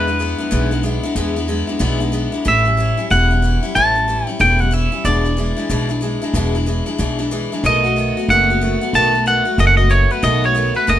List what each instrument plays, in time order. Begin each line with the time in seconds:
Already playing: upright bass E2, clean electric guitar B4
0.07 steel-string acoustic guitar G#3 B3 D4 E4
0.19 steel-string acoustic guitar G#3 B3 D4 E4
0.38 steel-string acoustic guitar G#3 B3 D4 E4
0.51 upright bass B1, steel-string acoustic guitar E2 E3 G#3 B3 D4 E4
0.71 steel-string acoustic guitar G#3 B3 D4 E4
0.83 steel-string acoustic guitar G#3 B3 D4 E4
1.03 steel-string acoustic guitar G#3 B3 D4 E4
1.15 upright bass E2, steel-string acoustic guitar E2 E3 G#3 B3 D4 E4
1.36 steel-string acoustic guitar G#3 B3 D4 E4
1.48 steel-string acoustic guitar G#3 B3 D4 E4
1.67 steel-string acoustic guitar G#3 B3 D4 E4
1.79 upright bass B1, steel-string acoustic guitar E2 E3 G#3 B3 D4 E4
2.00 steel-string acoustic guitar G#3 B3 D4 E4
2.12 steel-string acoustic guitar G#3 B3 D4 E4
2.32 steel-string acoustic guitar G#3 B3 D4 E4
2.45 upright bass A1, steel-string acoustic guitar A2 E3 G3 C#4 E4, clean electric guitar E5
2.65 steel-string acoustic guitar G3 C#4 E4
2.77 steel-string acoustic guitar E3 G3 C#4 E4
2.97 steel-string acoustic guitar G3 C#4 E4
3.10 upright bass E1, steel-string acoustic guitar A2 E3 G3 C#4 E4, clean electric guitar F#5
3.31 steel-string acoustic guitar G3 C#4 E4
3.42 steel-string acoustic guitar E3 G3 C#4 E4
3.63 steel-string acoustic guitar G3 C#4 E4
3.75 upright bass A1, steel-string acoustic guitar A2 E3 G3 C#4 E4, clean electric guitar A5
3.95 steel-string acoustic guitar G3 C#4 E4
4.08 steel-string acoustic guitar E3 G3 C#4 E4
4.26 steel-string acoustic guitar G3 C#4 E4, clean electric guitar G5
4.39 upright bass E1, steel-string acoustic guitar A2 E3 G3 C#4 E4, clean electric guitar G5
4.59 steel-string acoustic guitar G3 C#4 E4, clean electric guitar F#5
4.71 steel-string acoustic guitar E3 G3 C#4 E4, clean electric guitar E5
4.92 steel-string acoustic guitar G3 C#4 E4
5.05 upright bass E1, steel-string acoustic guitar E2 B2 E3 G#3 D4 E4, clean electric guitar D5
5.24 steel-string acoustic guitar E3 G#3 D4 E4
5.37 steel-string acoustic guitar E3 G#3 D4 E4
5.57 steel-string acoustic guitar E3 G#3 D4 E4
5.70 upright bass B1, steel-string acoustic guitar E2 B2 E3 G#3 D4 E4
5.89 steel-string acoustic guitar E3 G#3 D4 E4
6.01 steel-string acoustic guitar E3 G#3 D4 E4
6.22 steel-string acoustic guitar E3 G#3 D4 E4
6.34 upright bass E1, steel-string acoustic guitar E2 B2 E3 G#3 D4 E4
6.55 steel-string acoustic guitar E3 G#3 D4 E4
6.66 steel-string acoustic guitar E3 G#3 D4 E4
6.86 steel-string acoustic guitar E3 G#3 D4 E4
6.98 upright bass B1, steel-string acoustic guitar E2 B2 E3 G#3 D4 E4
7.19 steel-string acoustic guitar E3 G#3 D4 E4
7.31 steel-string acoustic guitar E3 G#3 D4 E4
7.52 steel-string acoustic guitar E3 G#3 D4 E4
7.64 upright bass B1, steel-string acoustic guitar B2 D#3 A3 B3 F#4, clean electric guitar D#5
7.84 steel-string acoustic guitar A3 B3 F#4
7.96 steel-string acoustic guitar D#3 A3 B3 F#4
8.17 steel-string acoustic guitar A3 B3 F#4
8.28 upright bass F#1, steel-string acoustic guitar B2 D#3 A3 B3 F#4, clean electric guitar F#5
8.50 steel-string acoustic guitar A3 B3 F#4
8.61 steel-string acoustic guitar D#3 A3 B3 F#4
8.81 steel-string acoustic guitar A3 B3 F#4
8.93 upright bass B1, steel-string acoustic guitar B2 D#3 A3 B3 F#4, clean electric guitar A5
9.13 steel-string acoustic guitar A3 B3 F#4
9.26 steel-string acoustic guitar D#3 A3 B3 F#4, clean electric guitar F#5
9.45 steel-string acoustic guitar A3 B3 F#4
9.58 upright bass F#1, steel-string acoustic guitar B2 D#3 A3 B3 F#4, clean electric guitar D#5
9.67 clean electric guitar F#5
9.77 steel-string acoustic guitar A3 B3 F#4, clean electric guitar D#5
9.90 steel-string acoustic guitar D#3 A3 B3 F#4, clean electric guitar C#5
10.11 steel-string acoustic guitar A3 B3 F#4, clean electric guitar B4
10.23 upright bass B1, steel-string acoustic guitar B2 D#3 A3 B3 F#4, clean electric guitar D#5
10.44 steel-string acoustic guitar A3 B3 F#4, clean electric guitar C#5
10.55 steel-string acoustic guitar D#3 A3 B3 F#4
10.75 steel-string acoustic guitar A3 B3 F#4, clean electric guitar B4
10.87 upright bass F#1, steel-string acoustic guitar B2 D#3 A3 B3 F#4, clean electric guitar D#5